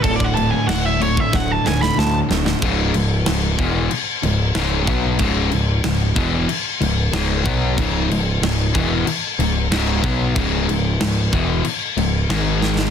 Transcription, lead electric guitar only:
0.03 0.14 A4 medium
0.16 0.26 D5 loud
0.24 0.34 F#5 loud
0.35 0.51 A5 loud
0.51 0.67 G#5 loud
0.68 0.84 F#5 medium
0.85 1.00 E5 medium
1.02 1.20 C#5 medium
1.20 1.34 E5 loud
1.35 1.51 F#5 medium
1.51 1.66 A5 loud
1.67 1.82 G#5 loud
1.82 1.98 B5 loud
1.98 2.17 A5 loud

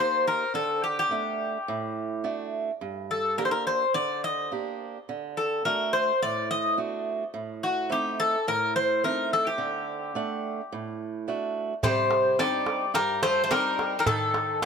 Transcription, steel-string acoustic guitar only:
0.00 0.43 A#3 soft
0.00 0.43 D#4 soft
0.00 0.44 G4 soft
0.54 1.09 D3 medium
1.11 1.57 A3 soft
1.11 1.57 D4 soft
1.11 1.57 F#5 soft
1.68 2.23 A2 medium
2.24 2.70 A3 soft
2.24 2.70 D4 soft
2.24 2.70 F#4 soft
2.81 3.36 G2 medium
3.38 3.83 A#3 soft
3.38 3.83 D4 soft
3.38 3.84 G4 soft
3.94 4.50 D3 medium
4.52 4.97 A#3 soft
4.52 4.97 D4 soft
4.52 4.97 G4 soft
5.09 5.63 D3 medium
5.65 6.10 A3 soft
5.65 6.10 D4 soft
5.65 6.11 F#4 medium
6.22 6.76 A2 medium
6.78 7.23 A3 soft
6.78 7.23 D4 soft
6.78 7.23 F#4 soft
7.34 7.89 A2 medium
7.90 8.35 A3 soft
7.90 8.35 C4 soft
7.90 8.35 D#4 medium
8.47 9.02 A2 medium
9.03 9.48 A3 soft
9.03 9.49 C4 soft
9.03 9.49 D#4 soft
9.58 10.13 D3 medium
10.15 10.60 A3 soft
10.15 10.61 D4 soft
10.15 10.60 F#5 medium
10.72 11.26 A2 medium
11.28 11.72 A3 soft
11.28 11.73 D4 soft
11.28 11.73 F#4 soft
11.83 12.37 C3 medium
12.39 12.84 C4 medium
12.39 12.84 D4 soft
12.39 12.84 D#4 medium
12.94 13.49 G2 medium
13.51 13.95 C4 soft
13.51 13.96 D4 soft
13.51 13.96 D#4 medium
14.06 14.61 D#3 medium

